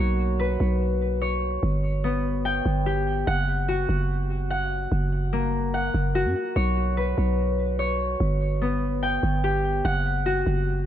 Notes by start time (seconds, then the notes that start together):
Already playing: A#3 F#4 F#5
0.00 B1 C#5
0.39 B4
0.60 B1
1.22 C#5
1.63 G1
2.04 B3
2.45 G5
2.66 G1
2.86 G4
3.27 F#1 F#5
3.68 F#4
3.89 F#1
4.50 F#5
4.92 F#1
5.33 A#3
5.74 F#5
5.94 F#1
6.15 F#4
6.25 F#2
6.56 B1 C#5
6.97 B4
7.18 B1
7.79 C#5
8.20 G1
8.62 B3
9.03 G5
9.23 G1
9.44 G4
9.85 F#1 F#5
10.26 F#4
10.46 F#1